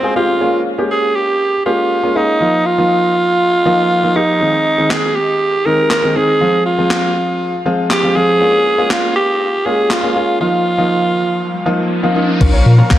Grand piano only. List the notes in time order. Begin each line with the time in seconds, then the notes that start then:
0.03 G#3 C4 F4 G#4
0.16 G#3 C4 F4 G4
0.41 G#3 A#3 C#4 F4
0.78 G#3 A#3 C#4 G4
1.66 G#3 A#3 C#4 G4
2.03 G#3 A#3 C#4 F4
2.15 G#3 A#3 C#4 F4
2.41 F3 A#3 D#4 F4
2.78 F3 A#3 D#4 F4
3.66 F3 A#3 D#4 F4
4.03 F3 A#3 D#4 F4
4.15 F3 A#3 D#4 G4
4.41 D#3 G#3 C4 D#4
4.78 D#3 G#3 C4 D#4
5.66 D#3 G#3 C4 D#4
6.03 D#3 G#3 C4 D#4
6.16 D#3 G#3 C4 D#4
6.41 F3 G#3 C4 F4
6.78 F3 G#3 C4 F4
7.66 F3 G#3 C4 F4
8.03 F3 G#3 C4 F4
8.15 F3 G#3 C4 F4
8.40 G#3 A#3 C#4 F4
8.78 G#3 A#3 C#4 F4
9.66 G#3 A#3 C#4 F4
10.03 G#3 A#3 C#4 F4
10.15 G#3 A#3 C#4 F4
10.40 F3 A#3 D#4 F4
10.78 F3 A#3 D#4 F4
11.66 F3 A#3 D#4 F4
12.03 F3 A#3 D#4 F4
12.16 F3 A#3 D#4 F4
12.41 F3 A#3 C#4 F4
12.78 F3 A#3 C#4 F4